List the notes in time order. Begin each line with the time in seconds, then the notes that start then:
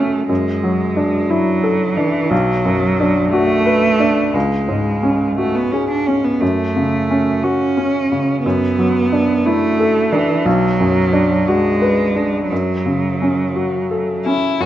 Already playing: F#2 C#3 A3 C#4 F#4 A4
0.29 F#2 G#3
0.63 F#3
0.96 D4
1.30 F#3 E4
1.63 A4
1.97 E3 D4
2.30 B1 F#3
2.65 F#2
3.00 D4
3.32 A3 F#4
3.66 B4
4.00 D4
4.34 C#2 G#3
4.68 G#2
5.03 C#4
5.38 A3 F#4
5.55 B3
5.72 C#4 G#4
5.90 D4
6.07 C#4
6.24 B3
6.41 F#2 A3
6.76 C#3
7.10 C#4
7.43 C#4 F#4
7.77 C#4
8.12 C#3
8.45 F#2 B3
8.79 F#3
9.12 D4
9.46 A3 E4
9.80 A4
10.12 E3 D4
10.45 B1 F#3
10.80 F#2
11.13 D4
11.47 G#3 F#4
11.81 B4
12.16 D4
12.50 F#2 F#3
12.86 C#3
13.22 C#4
13.55 F#4
13.91 A4
14.26 C#4 E4
14.60 F#2 F#3 A3 F#4 A4 C#5